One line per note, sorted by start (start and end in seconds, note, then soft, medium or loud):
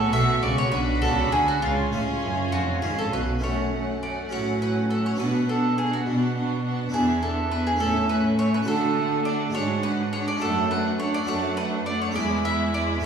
0.00 0.13 A1 medium
0.00 0.10 A2 soft
0.00 0.13 A2 medium
0.00 0.69 B3 medium
0.00 0.71 F#4 medium
0.00 0.11 A4 medium
0.00 0.72 C#6 medium
0.13 0.42 B1 medium
0.13 0.40 B2 soft
0.13 0.42 B2 medium
0.13 0.56 C#4 soft
0.13 0.56 A4 soft
0.13 0.41 E5 medium
0.43 0.51 C#2 medium
0.43 0.51 C#3 medium
0.43 0.70 C#3 soft
0.43 0.57 D5 medium
0.58 0.71 C#5 medium
0.71 1.01 B1 medium
0.71 1.02 B2 medium
0.71 0.99 B2 soft
0.71 1.63 D4 medium
0.71 1.60 F#4 medium
0.71 1.00 B4 medium
0.71 1.61 B5 medium
1.02 1.32 C#2 soft
1.02 1.32 C#3 medium
1.02 1.29 C#3 soft
1.02 1.46 B3 soft
1.02 1.46 D4 soft
1.02 1.46 F#4 soft
1.02 1.30 A4 medium
1.32 1.41 D2 medium
1.32 1.40 D3 soft
1.32 1.59 D3 soft
1.32 1.46 G#4 medium
1.48 1.62 F#4 medium
1.62 1.92 C#2 medium
1.62 1.89 C#3 soft
1.62 1.92 C#3 medium
1.62 3.19 C#4 medium
1.62 2.48 F4 medium
1.62 3.19 F4 medium
1.62 3.23 G#5 medium
1.92 2.01 A1 medium
1.92 2.00 A2 medium
1.92 2.19 A2 soft
1.92 2.14 G#3 soft
1.92 2.57 C#4 soft
2.22 2.52 F#1 medium
2.22 2.49 F#2 soft
2.22 2.52 F#2 medium
2.52 2.83 F1 medium
2.52 2.79 F2 soft
2.52 2.83 F2 medium
2.52 2.80 F#4 medium
2.82 3.12 G#1 soft
2.82 3.10 G#2 soft
2.82 3.12 G#2 medium
2.82 3.05 G#3 soft
2.82 3.26 C#4 soft
2.82 2.96 G#4 medium
2.98 3.12 A4 medium
3.13 3.42 B1 medium
3.13 3.42 B2 medium
3.13 3.40 B2 soft
3.13 3.41 B4 medium
3.39 4.21 F#2 soft
3.39 4.27 A3 soft
3.39 4.27 C#4 soft
3.43 4.19 F#2 soft
3.43 3.72 A3 soft
3.43 3.72 C#4 soft
3.43 3.99 C#5 medium
3.43 3.72 F#5 soft
3.73 4.01 A3 soft
3.73 4.01 C#4 soft
3.73 4.02 F#5 soft
4.03 4.31 A3 soft
4.03 4.31 C#4 soft
4.03 4.30 D5 medium
4.03 4.30 F#5 soft
4.29 5.09 A2 soft
4.29 5.07 A2 soft
4.29 4.60 F#3 soft
4.29 5.15 C#4 soft
4.29 4.60 C#4 soft
4.29 5.16 F#4 soft
4.29 4.59 C#5 medium
4.29 4.60 F#5 soft
4.61 4.89 F#3 soft
4.61 4.90 C#4 soft
4.61 4.89 B4 medium
4.61 4.89 F#5 soft
4.90 5.19 F#3 soft
4.90 5.19 C#4 soft
4.90 5.04 A4 medium
4.90 5.18 F#5 soft
5.06 5.19 C#5 medium
5.15 5.96 B2 soft
5.15 6.87 B3 soft
5.15 6.88 D4 soft
5.15 6.89 F#4 soft
5.19 5.94 B2 soft
5.19 5.47 B3 soft
5.19 5.47 D4 soft
5.19 5.47 B4 medium
5.19 5.47 F#5 soft
5.48 5.76 B3 soft
5.48 5.76 D4 soft
5.48 5.76 A4 medium
5.48 5.77 F#5 soft
5.77 6.05 B3 soft
5.77 6.05 D4 soft
5.77 5.91 G#4 medium
5.77 6.06 F#5 soft
5.93 6.06 F#4 soft
6.06 6.81 B2 soft
6.06 6.83 B2 soft
6.06 6.34 B3 soft
6.06 6.35 D4 soft
6.06 6.35 F#5 soft
6.36 6.64 B3 soft
6.36 6.63 D4 soft
6.36 6.64 F#5 soft
6.64 6.92 B3 soft
6.64 6.92 D4 soft
6.64 6.93 F#5 soft
6.89 7.76 B3 soft
6.89 7.76 D4 soft
6.89 7.77 E4 soft
6.93 7.68 E2 soft
6.93 7.70 E2 medium
6.93 7.21 B3 soft
6.93 7.20 D4 soft
6.93 7.21 G#4 medium
6.93 7.22 E5 soft
7.22 7.51 B3 soft
7.22 7.50 D4 soft
7.22 7.49 A4 medium
7.22 7.51 E5 soft
7.51 7.80 B3 soft
7.51 7.80 D4 soft
7.51 7.65 B4 medium
7.51 7.79 E5 soft
7.67 7.80 G#4 medium
7.76 8.61 A3 soft
7.76 8.63 C#4 soft
7.76 8.64 E4 soft
7.80 8.57 A2 medium
7.80 8.55 A2 soft
7.80 8.09 A3 soft
7.80 8.08 C#4 soft
7.80 8.07 A4 medium
7.80 8.09 E5 soft
8.09 8.37 A3 soft
8.09 8.37 C#4 soft
8.09 8.36 B4 medium
8.09 8.37 E5 soft
8.38 8.66 A3 soft
8.38 8.67 C#4 soft
8.38 8.52 C#5 medium
8.38 8.67 E5 soft
8.54 8.67 B4 medium
8.62 9.49 A3 soft
8.62 9.50 D4 soft
8.62 9.50 F#4 soft
8.67 9.44 D3 medium
8.67 9.41 D3 soft
8.67 8.95 A3 soft
8.67 8.94 D4 soft
8.67 9.21 A4 medium
8.67 8.95 F#5 soft
8.95 9.24 A3 soft
8.95 9.24 D4 soft
8.95 9.25 F#5 soft
9.25 9.54 A3 soft
9.25 9.53 D4 soft
9.25 9.52 D5 medium
9.25 9.53 F#5 soft
9.50 10.37 G#3 soft
9.50 10.37 D4 soft
9.50 10.38 F#4 soft
9.54 10.31 G#2 medium
9.54 10.29 G#2 soft
9.54 9.82 G#3 soft
9.54 9.83 D4 soft
9.54 9.81 C#5 medium
9.54 9.82 F#5 soft
9.83 10.11 G#3 soft
9.83 10.12 D4 soft
9.83 10.10 B4 medium
9.83 10.11 F#5 soft
10.12 10.41 G#3 soft
10.12 10.40 D4 soft
10.12 10.26 C#5 medium
10.12 10.40 F#5 soft
10.28 10.41 D5 medium
10.37 11.22 A3 soft
10.37 11.24 D4 soft
10.37 11.25 F#4 soft
10.41 11.16 F#2 soft
10.41 11.18 F#2 medium
10.41 10.69 A3 medium
10.41 10.69 D4 soft
10.41 10.69 A4 medium
10.41 10.69 F#5 medium
10.70 10.98 A3 soft
10.70 10.99 D4 soft
10.70 10.98 B4 medium
10.70 10.99 F#5 soft
10.99 11.27 A3 soft
10.99 11.28 D4 soft
10.99 11.13 C#5 medium
10.99 11.28 F#5 soft
11.14 11.28 D5 medium
11.24 12.11 A3 soft
11.24 12.12 D4 soft
11.24 12.13 F#4 soft
11.28 12.06 F#2 medium
11.28 12.03 F#2 soft
11.28 11.56 A3 soft
11.28 11.56 D4 medium
11.28 11.55 C#5 medium
11.28 11.57 F#5 medium
11.57 11.86 A3 medium
11.57 11.86 D4 soft
11.57 11.84 B4 medium
11.57 11.86 F#5 soft
11.86 12.16 A3 soft
11.86 12.16 D4 soft
11.86 12.00 D5 medium
11.86 12.16 F#5 soft
12.02 12.15 C#5 medium
12.11 12.99 B3 soft
12.11 12.99 E4 soft
12.11 13.00 G#4 soft
12.15 12.91 E2 soft
12.15 12.94 E2 medium
12.15 12.44 G#3 medium
12.15 12.44 E4 medium
12.15 12.43 D5 medium
12.15 12.45 B5 soft
12.45 12.73 G#3 soft
12.45 12.73 E4 soft
12.45 12.73 E5 medium
12.45 12.75 B5 soft
12.74 13.04 G#3 soft
12.74 13.02 E4 soft
12.74 13.02 D5 medium
12.74 13.04 B5 soft
13.00 13.06 C#4 soft
13.00 13.06 E4 soft
13.00 13.06 A4 soft